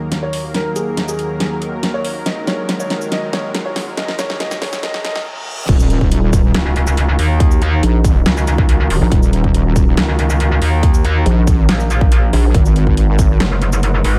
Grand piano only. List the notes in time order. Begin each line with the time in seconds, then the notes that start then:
0.23 C#5
0.54 A#4
0.76 G#4
1.08 G#4
1.40 G#4
1.94 C#5
2.26 D#5
2.47 C#5
2.80 C#5
3.12 D#5
3.33 C#5
3.66 C#5
3.97 D#5
4.19 C#5
4.40 D#5
4.62 C#5
4.83 D#5
5.05 D#5